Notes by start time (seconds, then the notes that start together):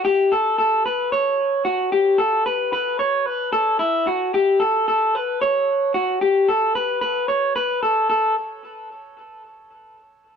0.05 G4
0.32 A4
0.58 A4
0.86 B4
1.12 C#5
1.65 F#4
1.92 G4
2.18 A4
2.46 B4
2.73 B4
2.99 C#5
3.26 B4
3.53 A4
3.79 E4
4.07 F#4
4.34 G4
4.60 A4
4.88 A4
5.15 B4
5.42 C#5
5.94 F#4
6.21 G4
6.48 A4
6.75 B4
7.01 B4
7.28 C#5
7.56 B4
7.83 A4
8.10 A4